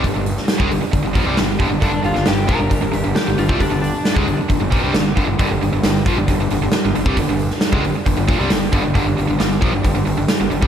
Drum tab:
HH |o-o-o-o-o-o-o-o-|o-o-o-o-o-o-o-o-|o-o-o-o-o-o-o-o-|o-o-o-o-o-o-o-o-|
SD |---oo-------o---|---oo-------o---|----o-------o---|----o-------o---|
BD |o----o--o-o---o-|o-----o-o------o|o----o--o-o---o-|o-----o-o------o|

HH |o-o-o-o-o-o-o-o-|o-o-o-o-o-o-o-o-|
SD |---oo-------o---|----o-------o---|
BD |o----o--o-o---o-|o-----o-o------o|